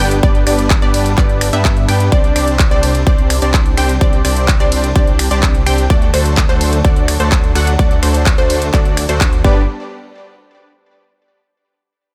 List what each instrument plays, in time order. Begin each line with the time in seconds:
Already playing: string section G3 B3 D4
0.00 detuned saw bass G1, supersaw synth B3 D4 G4 B4 G5, synth pluck G5
0.11 closed hi-hat
0.23 detuned saw bass G1, supersaw synth B3 D4 G4 B4 D5, synth pluck D5, kick, closed hi-hat
0.35 closed hi-hat
0.47 detuned saw bass G1, supersaw synth B3 D4 G4 B4 D5, synth pluck D5, finger snap, open hi-hat, ride
0.59 closed hi-hat
0.70 kick, clap, closed hi-hat
0.82 detuned saw bass G1, supersaw synth B3 D4 G4 B4 D5, synth pluck D5, closed hi-hat
0.94 open hi-hat, ride
1.06 closed hi-hat
1.18 detuned saw bass G1, supersaw synth B3 D4 G4 B4 D5, synth pluck D5, kick, clap, closed hi-hat
1.29 closed hi-hat
1.41 finger snap, open hi-hat, ride
1.53 detuned saw bass G2, supersaw synth B3 D4 G4 B4 E5, synth pluck E5, closed hi-hat
1.65 kick, clap, closed hi-hat
1.77 closed hi-hat
1.88 detuned saw bass G2, supersaw synth B3 D4 G4 B4 G5, synth pluck G5, finger snap, open hi-hat, ride
2.00 closed hi-hat
2.12 detuned saw bass C2, supersaw synth C4 D4 G4 C5 D5, string section C4, synth pluck D5, kick, closed hi-hat
2.24 closed hi-hat
2.36 detuned saw bass C2, supersaw synth C4 D4 G4 C5 D5, synth pluck D5, finger snap, open hi-hat, ride
2.48 closed hi-hat
2.59 kick, clap, closed hi-hat
2.71 detuned saw bass C2, supersaw synth C4 D4 G4 C5 D5, synth pluck D5, closed hi-hat
2.83 open hi-hat, ride
2.95 closed hi-hat
3.07 detuned saw bass C2, supersaw synth C4 D4 G4 C5 D5, synth pluck D5, kick, closed hi-hat
3.18 closed hi-hat
3.30 finger snap, open hi-hat, ride
3.42 detuned saw bass C2, supersaw synth C4 D4 G4 C5 D5, synth pluck D5, closed hi-hat
3.54 kick, clap, closed hi-hat
3.66 closed hi-hat
3.77 detuned saw bass C2, supersaw synth C4 D4 G4 C5 G5, synth pluck G5, finger snap, open hi-hat, ride
3.89 closed hi-hat
4.01 detuned saw bass C2, supersaw synth C4 D4 G4 C5 D5, synth pluck D5, kick, closed hi-hat
4.13 closed hi-hat
4.25 detuned saw bass C2, supersaw synth C4 D4 G4 C5 D5, synth pluck D5, finger snap, open hi-hat, ride
4.37 closed hi-hat
4.48 kick, clap, closed hi-hat
4.60 detuned saw bass C2, supersaw synth C4 D4 G4 C5 D5, synth pluck D5, closed hi-hat
4.72 open hi-hat, ride
4.84 closed hi-hat
4.96 detuned saw bass C2, supersaw synth C4 D4 G4 C5 D5, synth pluck D5, kick, closed hi-hat
5.07 closed hi-hat
5.19 finger snap, open hi-hat, ride
5.31 detuned saw bass C2, supersaw synth C4 D4 G4 C5 D5, synth pluck D5, closed hi-hat
5.43 kick, clap, closed hi-hat
5.55 closed hi-hat
5.66 detuned saw bass C2, supersaw synth C4 D4 G4 C5 G5, synth pluck G5, finger snap, open hi-hat, ride
5.78 closed hi-hat
5.90 detuned saw bass D2, string section F#3 A3 D4, supersaw synth A3 D4 F#4 A4 D5, synth pluck D5, kick, closed hi-hat
6.02 closed hi-hat
6.14 detuned saw bass D2, supersaw synth A3 D4 F#4 A4 C5, synth pluck C5, finger snap, open hi-hat, ride
6.26 closed hi-hat
6.37 kick, clap, closed hi-hat
6.49 detuned saw bass D2, supersaw synth A3 D4 F#4 A4 C5, synth pluck C5, closed hi-hat
6.61 open hi-hat, ride
6.73 closed hi-hat
6.84 detuned saw bass D2, supersaw synth A3 D4 F#4 A4 D5, synth pluck D5, kick, closed hi-hat
6.96 closed hi-hat
7.08 finger snap, open hi-hat, ride
7.20 detuned saw bass D2, supersaw synth A3 D4 F#4 A4 C5, synth pluck C5, closed hi-hat
7.32 kick, clap, closed hi-hat
7.44 closed hi-hat
7.55 detuned saw bass D2, supersaw synth A3 D4 F#4 A4 F#5, synth pluck F#5, finger snap, open hi-hat, ride
7.67 closed hi-hat
7.79 detuned saw bass D2, supersaw synth A3 D4 F#4 A4 D5, synth pluck D5, kick, closed hi-hat
7.91 closed hi-hat
8.03 detuned saw bass D2, supersaw synth A3 D4 F#4 A4 C5, synth pluck C5, finger snap, open hi-hat, ride
8.14 closed hi-hat
8.26 kick, clap, closed hi-hat
8.38 detuned saw bass D2, supersaw synth A3 D4 F#4 A4 C5, synth pluck C5, closed hi-hat
8.50 open hi-hat, ride
8.62 closed hi-hat
8.74 detuned saw bass D2, supersaw synth A3 D4 F#4 A4 D5, synth pluck D5, kick, clap, closed hi-hat
8.85 closed hi-hat
8.97 finger snap, open hi-hat, ride
9.09 detuned saw bass D2, supersaw synth A3 D4 F#4 A4 C5, synth pluck C5, closed hi-hat
9.21 kick, clap, closed hi-hat
9.33 closed hi-hat
9.44 detuned saw bass G1, string section G3 B3 D4, supersaw synth B3 D4 G4 B4 D5, synth pluck D5, kick